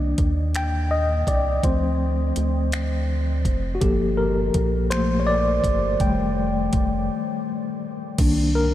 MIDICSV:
0, 0, Header, 1, 4, 480
1, 0, Start_track
1, 0, Key_signature, -2, "minor"
1, 0, Tempo, 727273
1, 1080, Time_signature, 6, 3, 24, 8
1, 5769, End_track
2, 0, Start_track
2, 0, Title_t, "Tine electric piano"
2, 0, Program_c, 0, 4
2, 0, Control_c, 0, 64, 127
2, 0, Note_on_c, 0, 51, 44
2, 0, Note_on_c, 0, 58, 36
2, 0, Note_on_c, 0, 62, 44
2, 373, Note_on_c, 0, 79, 91
2, 601, Note_on_c, 0, 75, 83
2, 614, Note_off_c, 0, 79, 0
2, 845, Note_on_c, 0, 74, 72
2, 848, Note_off_c, 0, 75, 0
2, 1066, Note_off_c, 0, 74, 0
2, 1085, Note_on_c, 0, 72, 62
2, 1088, Note_off_c, 0, 58, 0
2, 1088, Control_c, 0, 64, 0
2, 1088, Note_on_c, 0, 53, 44
2, 1090, Note_off_c, 0, 62, 0
2, 1092, Note_on_c, 0, 57, 42
2, 1093, Note_off_c, 0, 51, 0
2, 1096, Note_on_c, 0, 60, 47
2, 1198, Control_c, 0, 64, 127
2, 1778, Note_off_c, 0, 53, 0
2, 1780, Note_off_c, 0, 57, 0
2, 1782, Note_off_c, 0, 60, 0
2, 2016, Note_off_c, 0, 72, 0
2, 2474, Note_on_c, 0, 66, 55
2, 2514, Note_on_c, 0, 67, 75
2, 2519, Note_on_c, 0, 53, 47
2, 2520, Note_off_c, 0, 66, 0
2, 2524, Note_on_c, 0, 69, 42
2, 2527, Note_on_c, 0, 58, 49
2, 2530, Control_c, 0, 64, 0
2, 2658, Control_c, 0, 64, 127
2, 2755, Note_on_c, 0, 70, 80
2, 2764, Note_off_c, 0, 67, 0
2, 3235, Note_off_c, 0, 53, 0
2, 3237, Note_on_c, 0, 72, 89
2, 3242, Note_off_c, 0, 58, 0
2, 3243, Note_on_c, 0, 53, 46
2, 3245, Note_on_c, 0, 57, 43
2, 3250, Note_on_c, 0, 58, 52
2, 3252, Note_off_c, 0, 70, 0
2, 3419, Note_off_c, 0, 72, 0
2, 3430, Note_on_c, 0, 73, 66
2, 3458, Note_off_c, 0, 53, 0
2, 3459, Note_off_c, 0, 57, 0
2, 3462, Note_off_c, 0, 58, 0
2, 3476, Note_on_c, 0, 74, 88
2, 3478, Note_off_c, 0, 73, 0
2, 3936, Note_off_c, 0, 69, 0
2, 3966, Note_on_c, 0, 79, 76
2, 3969, Note_on_c, 0, 51, 43
2, 3970, Control_c, 0, 64, 0
2, 3973, Note_off_c, 0, 74, 0
2, 3974, Note_on_c, 0, 55, 46
2, 3976, Note_on_c, 0, 57, 53
2, 4098, Control_c, 0, 64, 127
2, 4897, Note_off_c, 0, 79, 0
2, 5379, Note_off_c, 0, 51, 0
2, 5381, Note_off_c, 0, 55, 0
2, 5382, Note_off_c, 0, 57, 0
2, 5408, Control_c, 0, 64, 0
2, 5410, Note_on_c, 0, 51, 53
2, 5414, Note_on_c, 0, 58, 45
2, 5417, Note_on_c, 0, 62, 55
2, 5510, Control_c, 0, 64, 127
2, 5645, Note_on_c, 0, 70, 91
2, 5769, Note_off_c, 0, 51, 0
2, 5769, Note_off_c, 0, 58, 0
2, 5769, Note_off_c, 0, 62, 0
2, 5769, Note_off_c, 0, 70, 0
2, 5769, End_track
3, 0, Start_track
3, 0, Title_t, "Analog synth bass"
3, 0, Program_c, 1, 38
3, 0, Note_on_c, 1, 36, 98
3, 95, Note_off_c, 1, 36, 0
3, 124, Note_on_c, 1, 39, 79
3, 816, Note_off_c, 1, 39, 0
3, 842, Note_on_c, 1, 36, 73
3, 1057, Note_off_c, 1, 36, 0
3, 1082, Note_on_c, 1, 38, 104
3, 1535, Note_off_c, 1, 38, 0
3, 1564, Note_on_c, 1, 38, 83
3, 2280, Note_on_c, 1, 29, 87
3, 2290, Note_off_c, 1, 38, 0
3, 2496, Note_off_c, 1, 29, 0
3, 2520, Note_on_c, 1, 31, 91
3, 2974, Note_off_c, 1, 31, 0
3, 3003, Note_on_c, 1, 34, 84
3, 3696, Note_off_c, 1, 34, 0
3, 3722, Note_on_c, 1, 31, 87
3, 3937, Note_off_c, 1, 31, 0
3, 3964, Note_on_c, 1, 29, 105
3, 4416, Note_off_c, 1, 29, 0
3, 4445, Note_on_c, 1, 29, 75
3, 4683, Note_off_c, 1, 29, 0
3, 5405, Note_on_c, 1, 36, 98
3, 5769, Note_off_c, 1, 36, 0
3, 5769, End_track
4, 0, Start_track
4, 0, Title_t, "Drums"
4, 118, Note_on_c, 9, 42, 59
4, 120, Note_on_c, 9, 36, 75
4, 184, Note_off_c, 9, 42, 0
4, 186, Note_off_c, 9, 36, 0
4, 360, Note_on_c, 9, 42, 60
4, 367, Note_on_c, 9, 26, 95
4, 426, Note_off_c, 9, 42, 0
4, 433, Note_off_c, 9, 26, 0
4, 838, Note_on_c, 9, 36, 66
4, 842, Note_on_c, 9, 42, 67
4, 904, Note_off_c, 9, 36, 0
4, 908, Note_off_c, 9, 42, 0
4, 1079, Note_on_c, 9, 36, 98
4, 1079, Note_on_c, 9, 42, 71
4, 1145, Note_off_c, 9, 36, 0
4, 1145, Note_off_c, 9, 42, 0
4, 1557, Note_on_c, 9, 42, 61
4, 1623, Note_off_c, 9, 42, 0
4, 1798, Note_on_c, 9, 42, 60
4, 1804, Note_on_c, 9, 26, 97
4, 1864, Note_off_c, 9, 42, 0
4, 1870, Note_off_c, 9, 26, 0
4, 2277, Note_on_c, 9, 36, 72
4, 2279, Note_on_c, 9, 42, 68
4, 2343, Note_off_c, 9, 36, 0
4, 2345, Note_off_c, 9, 42, 0
4, 2518, Note_on_c, 9, 36, 100
4, 2518, Note_on_c, 9, 42, 68
4, 2584, Note_off_c, 9, 36, 0
4, 2584, Note_off_c, 9, 42, 0
4, 2998, Note_on_c, 9, 42, 62
4, 3000, Note_on_c, 9, 36, 75
4, 3064, Note_off_c, 9, 42, 0
4, 3066, Note_off_c, 9, 36, 0
4, 3241, Note_on_c, 9, 42, 58
4, 3247, Note_on_c, 9, 26, 95
4, 3307, Note_off_c, 9, 42, 0
4, 3313, Note_off_c, 9, 26, 0
4, 3720, Note_on_c, 9, 36, 76
4, 3725, Note_on_c, 9, 42, 69
4, 3786, Note_off_c, 9, 36, 0
4, 3791, Note_off_c, 9, 42, 0
4, 3960, Note_on_c, 9, 36, 104
4, 3960, Note_on_c, 9, 42, 65
4, 4026, Note_off_c, 9, 36, 0
4, 4026, Note_off_c, 9, 42, 0
4, 4440, Note_on_c, 9, 42, 61
4, 4442, Note_on_c, 9, 36, 86
4, 4506, Note_off_c, 9, 42, 0
4, 4508, Note_off_c, 9, 36, 0
4, 5402, Note_on_c, 9, 42, 78
4, 5402, Note_on_c, 9, 49, 92
4, 5403, Note_on_c, 9, 36, 112
4, 5468, Note_off_c, 9, 42, 0
4, 5468, Note_off_c, 9, 49, 0
4, 5469, Note_off_c, 9, 36, 0
4, 5769, End_track
0, 0, End_of_file